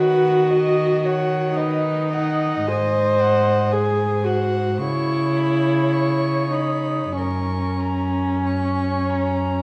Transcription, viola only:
Already playing: F#4
1.56 D#4
2.68 C5
3.73 G#4
4.24 F#4
4.81 E4
6.51 D#4
7.13 C#4

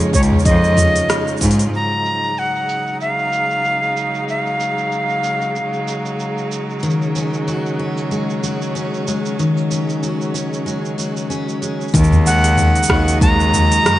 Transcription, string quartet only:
Already playing: C#3 F3 G#3 C#4
1.73 C#3 F#3 G#3 D#4
6.83 C#4
11.95 C#3 F#3 G#3 D#5

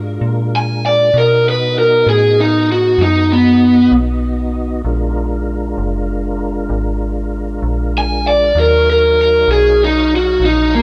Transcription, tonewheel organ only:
Already playing: G#3 D4 F4 A#4
1.14 B3 D#4 F#4 D#5
4.86 G#3 D4 F4 A#4
8.56 F#3 D#4 C#5 F5

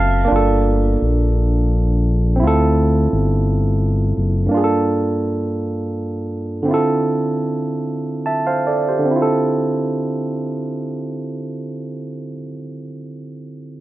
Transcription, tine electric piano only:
Already playing: C4 F4 A4 E5 F5 A5
0.25 A#3 D4
0.32 F4 A4
2.36 C4 E4
2.43 F4
2.47 A4
4.46 G2 A#3
4.51 D4 F4
4.57 G#4
4.64 A4
6.63 D3 C4
6.68 E4 F4
6.74 A4
8.26 E5 A5
8.47 C5 F5
8.67 A4 D5
8.88 G4 C5
8.99 D3
9.05 C4
9.11 E4
9.16 F4
9.22 A4

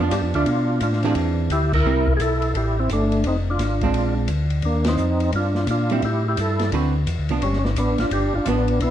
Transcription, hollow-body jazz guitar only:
0.00 F3 B3 D4
0.34 F3 A3 D4
1.04 E3 C4 D4 G#4
1.86 G3 C4 E4
3.83 G#3 C4 D4
5.91 G3 C4 E4
6.73 D3 C4 F#4 B4
7.31 F3 B3 D4
8.47 F3 B3 D4

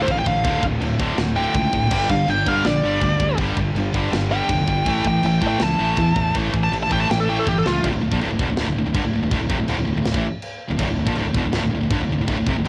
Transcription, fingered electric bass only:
0.08 A1
0.26 A1
0.44 D1
0.63 D1
0.80 D1
0.99 D1
1.18 D1
1.54 C#2
1.73 D1
1.90 G1
2.09 G2
2.28 G1
2.46 G2
2.65 A#1
2.83 G1
3.01 D2
3.19 D2
3.38 G1
3.57 G1
3.74 G1
3.94 G1
4.12 G1
4.49 F1
4.67 G1
4.85 A1
5.05 A2
5.23 A1
5.42 A2
5.61 C#2
5.80 A1
5.97 E2
6.16 E2
6.35 A1
6.54 A1
6.72 A1
6.91 A1
7.10 A1
7.46 G1
7.65 C#2
7.84 D1
7.94 D1
8.03 D1
8.12 A#1
8.22 D1
8.32 D1
8.39 E1
8.50 D1
8.58 D1
8.67 D1
8.76 D1
8.86 D1
8.94 G1
9.04 D1
9.14 D1
9.22 D1
9.31 D1
9.40 D1
9.49 F1
9.59 D1
9.68 D1
9.78 D1
9.87 D1
9.96 D1
10.05 D1
10.14 A1
10.70 D1
10.79 D1
10.88 D1
10.97 D1
11.07 A#1
11.16 D1
11.25 D1
11.34 E1
11.44 D1
11.54 D1
11.63 D1
11.73 D1
11.82 D1
11.90 G1
12.00 D1
12.09 D1
12.18 D1
12.28 D1
12.37 D1
12.46 F1
12.55 D1
12.65 D1

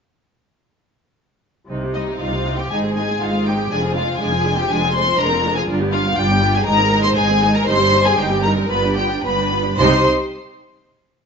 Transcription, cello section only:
1.70 C3
2.21 C3
2.71 G#2
3.21 G#2
3.71 F2
4.21 F2
4.70 F2
5.20 F2
5.68 G2
6.17 G2
6.66 G#2
7.16 G#2
7.67 G2
8.18 G2
8.69 G2
9.22 G2
9.77 C3

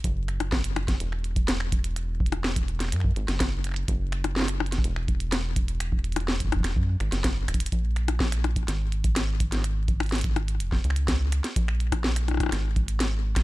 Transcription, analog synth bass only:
0.04 F#1
1.00 E1
2.92 F#2
3.16 G#1
3.28 F#1
3.88 F#1
4.84 E1
6.76 F#2
7.00 G#1
7.12 F#1
7.48 E1
7.72 A#1
8.68 G#1
10.60 F1
10.84 C#2
11.56 A#1
12.52 G#1

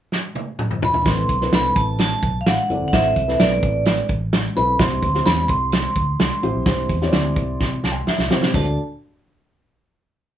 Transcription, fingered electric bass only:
1.06 A1
1.29 B1
1.52 C2
1.76 A1
2.22 B1
2.46 A1
2.70 F#1
2.82 G1
2.93 A1
3.16 C2
3.40 B1
3.63 A1
4.10 A1
4.57 B1
4.79 C2
5.02 D2
5.27 E2
5.49 C2
5.96 D2
6.19 C2
6.43 A1
6.55 B1
6.66 C2
6.89 E2
7.13 D2
7.36 C2
7.60 C3
7.83 C2
8.18 C2
8.30 C3
8.54 D2

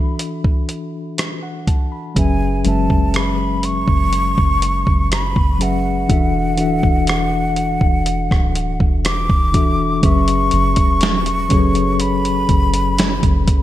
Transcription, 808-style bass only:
2.16 F#1
2.66 F#1
2.90 F#1
3.88 F#1
4.38 F#1
4.87 F#1
5.36 F#1
6.10 E1
6.59 D1
6.83 E1
7.81 E1
8.31 D1
8.81 E1
9.30 E1
10.03 F#1
10.53 F#1
10.77 E1
11.52 F#1
12.49 F#1
13.23 F#1

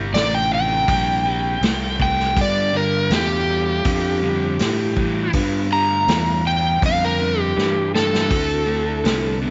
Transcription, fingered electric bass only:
Already playing: G1
0.13 A1
0.88 A#1
1.61 C2
2.36 G2
3.10 E2
3.85 F2
4.61 A2
5.34 G2
6.07 E2
6.82 F2
7.57 G2
8.31 D2
9.04 C2

